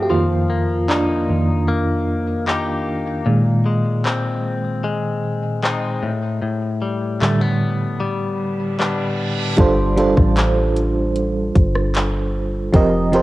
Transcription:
Already playing: clean electric guitar G2 A3 C4, fm electric piano F#4 G4
0.02 fm electric piano G4
0.10 fm electric piano F2 D#3 A#3 F4, clean electric guitar F3
0.50 clean electric guitar A#3
0.89 fm electric piano D4, clean electric guitar D#4, clap
1.29 fm electric piano F2 D#3 A#3
1.68 clean electric guitar A#3
2.47 clean electric guitar A#3 D#4 G4, clap
3.26 clean electric guitar A#2, fm electric piano A#2 D#3 G#3
3.66 clean electric guitar G#3
4.05 clean electric guitar C4, clap
4.84 clean electric guitar G#3
5.63 clean electric guitar G#3 C4 D#4, clap
6.03 clean electric guitar A2
6.42 clean electric guitar A2
6.82 clean electric guitar G3
7.21 fm electric piano A2 D3 G3, clean electric guitar A3, clap
7.41 clean electric guitar B3
8.00 clean electric guitar G3, reverse cymbal
8.79 clean electric guitar G3 B3 D4, clap
9.57 808-style bass G1, fm electric piano G3 D4 F4 A4 C5, kick, closed hi-hat, impact
9.96 fm electric piano G3 D4 F4 A4 C5, closed hi-hat
10.17 808-style bass A1, kick, cross-stick
10.37 clap, closed hi-hat
10.76 closed hi-hat
11.16 closed hi-hat
11.56 808-style bass G1, kick, closed hi-hat
11.76 cross-stick
11.95 clap, closed hi-hat
12.72 808-style bass F1, fm electric piano F3 C4 G4 A#4 D#5, kick, closed hi-hat
13.12 fm electric piano F3 C4 G4 A#4 C5, closed hi-hat

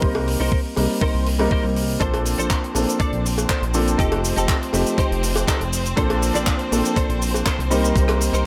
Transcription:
Already playing: clean electric guitar D#4 A#4 C5
0.02 analog synth bass C2, grand piano G3 A#3 C4 D#4 A#4, kick
0.15 cowbell
0.28 open hi-hat
0.40 analog synth bass C2, clean electric guitar D#4 A#4 C5
0.52 kick
0.76 analog synth bass C2, grand piano G3 A#3 C4 D#4 A#4, muted clean electric guitar stroke, open hi-hat, cowbell
1.01 clean electric guitar D#4 A#4 C5, kick
1.15 analog synth bass C2
1.26 open hi-hat
1.39 grand piano G3 A#3 C4 D#4 A#4, cowbell
1.51 clean electric guitar D#4 A#4 C5, kick
1.64 analog synth bass C2
1.76 muted clean electric guitar stroke, open hi-hat
2.00 analog synth bass A#1, grand piano F3 A#3 C4 D4 A4, string section C4 C5, clean electric guitar D4 A4 C5, kick, closed hi-hat, cabasa
2.14 closed hi-hat, cowbell
2.25 open hi-hat, cabasa
2.38 analog synth bass A#1, clean electric guitar D4 A4 C5, closed hi-hat, cabasa
2.50 kick, clap, closed hi-hat, cabasa
2.64 closed hi-hat
2.74 analog synth bass A#1, grand piano F3 A#3 C4 D4 A4, muted clean electric guitar stroke, open hi-hat, cowbell, cabasa
2.89 closed hi-hat, cabasa
2.99 analog synth bass A#1, clean electric guitar D4 A4 D5, kick, closed hi-hat, cabasa
3.13 analog synth bass A#1, closed hi-hat
3.26 open hi-hat, cabasa
3.38 closed hi-hat, cowbell, cabasa
3.49 clean electric guitar D4 A4 C5, kick, clap, closed hi-hat, cabasa
3.62 analog synth bass A#1, closed hi-hat
3.74 grand piano F3 A#3 C4 D4 A4, muted clean electric guitar stroke, open hi-hat, cabasa
3.87 closed hi-hat, cabasa
3.98 analog synth bass F1, grand piano F3 A3 C4 D#4 G4, clean electric guitar D#4 G4 A4, kick, closed hi-hat, cabasa
4.12 closed hi-hat, cowbell
4.24 open hi-hat, cabasa
4.36 analog synth bass F1, clean electric guitar D#4 G4 A4, closed hi-hat, cabasa
4.48 kick, clap, closed hi-hat, cabasa
4.63 closed hi-hat
4.72 analog synth bass F1, grand piano F3 A3 C4 D#4 G4, muted clean electric guitar stroke, open hi-hat, cowbell, cabasa
4.86 closed hi-hat, cabasa
4.98 clean electric guitar D#4 G4 C5, kick, closed hi-hat, cabasa
5.11 analog synth bass F1, closed hi-hat
5.23 open hi-hat, cabasa
5.36 closed hi-hat, cowbell, cabasa
5.47 clean electric guitar D#4 G4 A4, kick, clap, closed hi-hat, cabasa
5.61 analog synth bass F1, closed hi-hat
5.72 muted clean electric guitar stroke, open hi-hat, cabasa
5.86 closed hi-hat, cabasa
5.97 analog synth bass A#1, grand piano F3 A#3 C4 D4 A4, clean electric guitar D4 A4 C5, kick, closed hi-hat, cabasa
6.10 closed hi-hat, cowbell
6.22 open hi-hat, cabasa
6.34 analog synth bass A#1, clean electric guitar D4 A4 D5, closed hi-hat, cabasa
6.47 kick, clap, closed hi-hat, cabasa
6.59 closed hi-hat
6.71 analog synth bass A#1, grand piano F3 A#3 C4 D4 A4, muted clean electric guitar stroke, open hi-hat, cowbell, cabasa
6.85 closed hi-hat, cabasa
6.96 analog synth bass A#1, clean electric guitar D4 A4 C5, kick, closed hi-hat, cabasa
7.09 analog synth bass A#1, closed hi-hat
7.22 open hi-hat, cabasa
7.34 closed hi-hat, cowbell, cabasa
7.46 clean electric guitar D4 A4 C5, kick, clap, closed hi-hat, cabasa
7.59 analog synth bass C2, closed hi-hat
7.70 grand piano G3 A#3 C4 D#4 A#4, clean electric guitar D#4 A#4 C5, open hi-hat, cabasa
7.84 closed hi-hat, cabasa
7.95 analog synth bass C2, grand piano G3 A#3 C4 D#4 A#4, kick, closed hi-hat, cabasa
8.08 cross-stick, closed hi-hat, cowbell
8.20 open hi-hat, cabasa
8.33 analog synth bass C2, clean electric guitar D#4 A#4 C5, closed hi-hat, cabasa

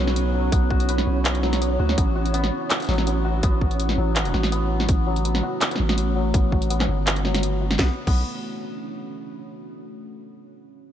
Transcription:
Already playing: 808-style bass B1, santur F#3 B3 F#4 B4, ambient pad B3 C#4 E4 C#5, synth texture C#4 C#5
0.08 snare
0.16 closed hi-hat
0.34 santur F#3
0.52 808-style bass B1, santur B3, kick, closed hi-hat
0.70 santur F#4, kick
0.80 closed hi-hat
0.89 santur B4, closed hi-hat
0.98 snare
1.07 808-style bass B1
1.25 clap, closed hi-hat
1.35 closed hi-hat
1.43 santur F#3, snare
1.53 snare, closed hi-hat
1.61 santur B3, closed hi-hat
1.79 808-style bass D2, santur F#4
1.89 snare
1.97 808-style bass A1, ambient pad A3, santur B3, kick, closed hi-hat
2.15 ambient pad C#4, santur F#4
2.26 closed hi-hat
2.34 santur B3, closed hi-hat
2.44 snare
2.70 clap, closed hi-hat
2.80 closed hi-hat
2.82 closed hi-hat
2.84 closed hi-hat
2.87 santur F#3, snare, closed hi-hat
2.89 808-style bass A1, closed hi-hat
2.91 closed hi-hat
2.93 closed hi-hat
2.96 snare, closed hi-hat
3.07 santur B3, closed hi-hat
3.25 santur F#4
3.43 808-style bass A1, santur B3, kick, closed hi-hat
3.61 kick
3.71 closed hi-hat
3.80 closed hi-hat
3.89 snare
3.98 808-style bass A1, santur F#3
4.16 santur B3, clap, closed hi-hat
4.25 closed hi-hat
4.34 808-style bass A1, santur F#4, snare
4.43 snare
4.52 santur B3, closed hi-hat
4.80 snare
4.89 808-style bass A1, kick, closed hi-hat
5.07 santur F#3
5.16 closed hi-hat
5.25 santur B3, closed hi-hat
5.35 snare
5.43 santur F#4
5.61 santur B3, clap, closed hi-hat
5.71 closed hi-hat
5.76 snare
5.80 808-style bass A1
5.89 snare
5.98 closed hi-hat
6.16 santur F#3
6.34 808-style bass A1, santur B3, kick, closed hi-hat
6.52 santur F#4, kick
6.62 closed hi-hat
6.70 santur B3, closed hi-hat
6.80 clap, snare
6.89 808-style bass G1
7.07 clap, closed hi-hat
7.16 closed hi-hat
7.25 santur F#3, snare
7.34 snare, closed hi-hat
7.43 santur B3, closed hi-hat
7.61 santur F#4
7.71 snare
7.79 808-style bass B1, santur B3, ambient pad B3, kick, snare
7.85 ambient pad D4
7.90 ambient pad F#4
7.97 ambient pad C#5
8.07 808-style bass B1, santur B3, kick, crash

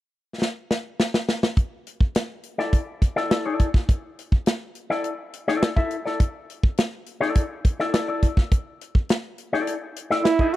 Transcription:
0.42 snare
0.71 snare
1.00 snare
1.14 snare
1.29 snare
1.43 snare
1.57 kick, closed hi-hat
1.87 closed hi-hat
2.01 kick
2.15 snare, closed hi-hat
2.43 closed hi-hat
2.58 clean electric guitar E4 A4 D5, snare
2.73 kick, closed hi-hat
3.02 kick, closed hi-hat
3.16 clean electric guitar E4 A4 D5, snare
3.31 clean electric guitar E4 A4 D5, snare, closed hi-hat
3.46 clean electric guitar E4 A4 D5
3.59 kick, closed hi-hat
3.74 kick, snare
3.89 kick, closed hi-hat
4.19 closed hi-hat
4.32 kick
4.46 snare, closed hi-hat
4.75 closed hi-hat
4.90 clean electric guitar E4 A4 D5, snare
5.04 closed hi-hat
5.33 closed hi-hat
5.48 clean electric guitar E4 A4 D5, snare
5.63 snare, closed hi-hat
5.76 clean electric guitar E4 A4 E5, kick
5.91 closed hi-hat
6.05 clean electric guitar E4 A4 D5, snare
6.20 kick, closed hi-hat
6.50 closed hi-hat
6.63 kick
6.78 snare, closed hi-hat
7.06 closed hi-hat
7.21 clean electric guitar E4 A4 D5, snare
7.35 kick, closed hi-hat
7.65 kick, closed hi-hat
7.80 clean electric guitar E4 A4 D5, snare
7.94 clean electric guitar E4 A4 D5, snare, closed hi-hat
8.08 clean electric guitar E4 A4 D5
8.22 kick, closed hi-hat
8.37 kick, snare
8.52 kick, closed hi-hat
8.81 closed hi-hat
8.95 kick
9.09 snare, closed hi-hat
9.38 closed hi-hat
9.53 clean electric guitar E4 A4 D5, snare
9.67 closed hi-hat
9.96 closed hi-hat
10.10 clean electric guitar E4 A4 D5, snare
10.24 flugelhorn E4, snare, closed hi-hat
10.39 clean electric guitar E4 A4 E5, kick

